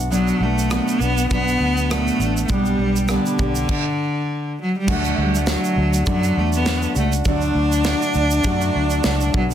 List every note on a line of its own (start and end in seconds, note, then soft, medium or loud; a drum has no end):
0.00 0.30 B1 medium
0.00 0.10 B3 soft
0.00 0.11 D4 soft
0.00 0.11 F#4 medium
0.10 0.41 B2 medium
0.10 0.41 F#3 medium
0.10 0.44 F#3 loud
0.10 0.41 B3 medium
0.10 0.40 D4 medium
0.10 0.39 F#4 medium
0.10 shaker medium
0.28 shaker soft
0.40 0.78 B1 medium
0.40 1.02 A3 medium
0.40 0.70 B3 soft
0.40 0.71 D4 soft
0.40 0.70 F#4 soft
0.59 shaker medium
0.70 1.00 B2 medium
0.70 1.01 F#3 medium
0.70 1.01 B3 medium
0.70 1.00 D4 medium
0.70 0.99 F#4 medium
0.70 cross-stick loud
0.70 shaker medium
0.88 shaker medium
1.00 1.25 B1 medium
1.00 1.30 B3 loud
1.00 1.31 B3 soft
1.00 1.31 D4 soft
1.00 1.30 F#4 medium
1.00 shaker medium
1.18 shaker medium
1.31 1.55 B1 medium
1.31 1.89 F#3 medium
1.31 1.92 B3 loud
1.31 1.90 B3 medium
1.31 1.91 D4 medium
1.31 1.91 F#4 medium
1.31 kick medium
1.31 shaker medium
1.48 shaker soft
1.60 2.09 D2 medium
1.77 shaker soft
1.90 2.20 B2 medium
1.90 2.20 F#3 medium
1.90 2.43 A3 loud
1.90 2.20 B3 medium
1.90 2.20 D4 medium
1.90 2.19 F#4 medium
1.90 cross-stick loud
1.90 shaker medium
2.07 shaker soft
2.19 2.44 A1 medium
2.19 2.50 B3 soft
2.19 2.50 D4 soft
2.19 2.50 F#4 soft
2.19 shaker soft
2.37 shaker soft
2.45 2.74 B1 loud
2.45 2.52 A3 medium
2.45 shaker medium
2.50 2.80 B2 medium
2.50 2.80 G3 medium
2.50 3.12 G3 loud
2.50 2.80 B3 medium
2.50 2.80 D4 medium
2.50 2.78 G4 medium
2.50 kick medium
2.65 shaker soft
2.78 3.17 B1 medium
2.78 3.08 B3 soft
2.78 3.09 D4 soft
2.78 3.09 G4 soft
2.96 shaker medium
3.09 3.39 B2 medium
3.09 4.58 D3 medium
3.09 3.39 G3 medium
3.09 3.39 B3 medium
3.09 3.39 D4 medium
3.09 3.38 G4 medium
3.09 cross-stick loud
3.09 shaker medium
3.26 shaker medium
3.39 3.63 B1 medium
3.39 3.70 B3 soft
3.39 3.69 D4 soft
3.39 3.69 G4 medium
3.39 kick medium
3.39 shaker soft
3.55 shaker medium
3.69 kick loud
3.69 crash medium
4.61 4.75 F#3 medium
4.79 4.93 G3 medium
4.87 5.12 D2 medium
4.87 6.06 D3 medium
4.87 5.46 F#3 medium
4.87 5.46 A3 medium
4.87 5.48 D4 medium
4.87 5.49 F#4 medium
4.87 kick loud
4.87 crash medium
4.91 5.23 A3 medium
5.04 shaker soft
5.17 5.55 D2 medium
5.17 5.38 G3 medium
5.35 5.48 A3 medium
5.35 shaker medium
5.47 6.06 F#3 medium
5.47 6.04 F#3 medium
5.47 6.06 A3 medium
5.47 6.07 D4 medium
5.47 6.07 F#4 medium
5.47 snare loud
5.47 shaker medium
5.64 shaker medium
5.77 6.01 D2 loud
5.93 shaker medium
6.06 6.31 F#2 medium
6.06 7.25 D3 medium
6.06 6.65 F#3 medium
6.06 6.41 F#3 loud
6.06 6.65 A3 medium
6.06 6.67 D4 medium
6.06 6.68 F#4 medium
6.06 kick loud
6.06 shaker medium
6.23 shaker medium
6.37 6.85 E2 medium
6.37 6.54 A3 medium
6.52 6.95 B3 medium
6.52 shaker soft
6.65 6.95 F#3 medium
6.65 6.96 A3 medium
6.65 6.96 D4 medium
6.65 6.94 F#4 medium
6.65 snare loud
6.65 shaker medium
6.82 shaker soft
6.95 7.20 C#2 medium
6.95 7.25 A3 soft
6.95 7.25 D4 soft
6.95 7.25 F#4 medium
6.95 shaker soft
6.99 7.12 A3 medium
7.12 shaker medium
7.25 7.50 D2 loud
7.25 8.44 D3 medium
7.25 7.85 F#3 medium
7.25 7.85 A3 medium
7.25 7.86 D4 medium
7.25 9.31 D4 loud
7.25 7.87 F#4 medium
7.25 kick medium
7.25 shaker medium
7.41 shaker soft
7.55 7.93 D2 loud
7.72 shaker medium
7.85 8.45 F#3 medium
7.85 8.45 A3 medium
7.85 8.46 D4 medium
7.85 8.46 F#4 medium
7.85 snare loud
7.85 shaker medium
8.02 shaker medium
8.14 8.39 D2 medium
8.14 shaker medium
8.31 shaker medium
8.44 8.69 F#2 medium
8.44 9.54 D3 loud
8.44 9.03 F#3 loud
8.44 9.03 A3 loud
8.44 9.05 D4 loud
8.44 9.06 F#4 loud
8.44 kick loud
8.44 shaker medium
8.61 shaker medium
8.75 8.99 D2 medium
8.90 shaker soft
9.04 9.29 C#2 medium
9.04 9.34 F#3 medium
9.04 9.34 A3 medium
9.04 9.34 D4 medium
9.04 9.32 F#4 medium
9.04 snare loud
9.04 shaker medium
9.21 shaker medium
9.33 9.54 B1 medium
9.33 9.50 F#3 medium
9.33 9.54 B3 soft
9.33 9.54 D4 soft
9.33 9.54 F#4 medium
9.33 kick loud
9.51 shaker medium